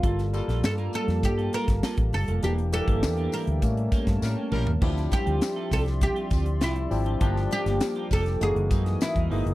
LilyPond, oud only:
\new Staff \with { instrumentName = "Oud" } { \time 4/4 \key d \minor \tempo 4 = 100 f'8 r8 a'8 a'8 g'8 bes'4 a'8 | g'8 a'4 bes'2 r8 | r8 g'4 a'8 g'4 e'8. r16 | r8 g'4 a'8 gis'4 e'8. r16 | }